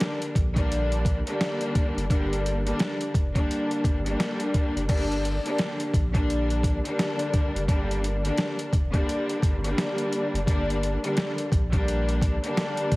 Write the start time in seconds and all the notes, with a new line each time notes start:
Already playing: D3 G3 A#3 D4
0.00 snare, closed hi-hat
0.22 closed hi-hat
0.35 A#1, kick, closed hi-hat
0.55 D3 G3 A#3 D4, kick, closed hi-hat
0.72 closed hi-hat
0.92 closed hi-hat
1.05 kick, closed hi-hat
1.26 D3 G3 A#3 D4, closed hi-hat
1.41 snare, closed hi-hat
1.61 closed hi-hat
1.75 kick, closed hi-hat
1.96 F#1, closed hi-hat
2.10 G1 D3 G3 A#3 D4, kick, closed hi-hat
2.33 closed hi-hat
2.46 closed hi-hat
2.65 D3 G3 A#3 D4, closed hi-hat
2.79 snare, closed hi-hat
3.01 closed hi-hat
3.14 F1, kick, closed hi-hat
3.35 D3 G3 A#3 D4, kick, closed hi-hat
3.51 closed hi-hat
3.71 closed hi-hat
3.84 G1, kick, closed hi-hat
4.05 D3 G3 A#3 D4, closed hi-hat
4.20 snare, closed hi-hat
4.40 closed hi-hat
4.54 kick, closed hi-hat
4.75 F#1, closed hi-hat
4.88 G1 D3 G3 A#3 D4, kick, closed hi-hat, crash
5.12 closed hi-hat
5.25 closed hi-hat
5.45 D3 G3 A#3 D4, closed hi-hat
5.58 snare, closed hi-hat
5.80 closed hi-hat
5.94 A#1, kick, closed hi-hat
6.13 D3 G3 A#3 D4, kick, closed hi-hat
6.30 closed hi-hat
6.50 closed hi-hat
6.63 kick, closed hi-hat
6.84 D3 G3 A#3 D4, closed hi-hat
6.99 snare, closed hi-hat
7.19 closed hi-hat
7.33 kick, closed hi-hat
7.54 F#1, closed hi-hat
7.68 G1 D3 G3 A#3 D4, kick, closed hi-hat
7.91 closed hi-hat
8.04 closed hi-hat
8.23 D3 G3 A#3 D4, closed hi-hat
8.38 snare, closed hi-hat
8.59 closed hi-hat
8.73 F1, kick, closed hi-hat
8.93 D3 G3 A#3 D4, kick, closed hi-hat
9.09 closed hi-hat
9.29 closed hi-hat
9.42 G1, kick, closed hi-hat
9.63 D3 G3 A#3 D4, closed hi-hat
9.78 snare, closed hi-hat
9.98 closed hi-hat
10.13 closed hi-hat
10.33 F#1, closed hi-hat
10.46 G1 D3 G3 A#3 D4, kick, closed hi-hat
10.70 closed hi-hat
10.83 closed hi-hat
11.03 D3 G3 A#3 D4, closed hi-hat
11.17 snare, closed hi-hat
11.38 closed hi-hat
11.52 A#1, kick, closed hi-hat
11.72 D3 G3 A#3 D4, kick, closed hi-hat
11.88 closed hi-hat
12.09 closed hi-hat
12.22 kick, closed hi-hat
12.43 D3 G3 A#3 D4, closed hi-hat
12.57 snare, closed hi-hat
12.77 closed hi-hat
12.92 kick, closed hi-hat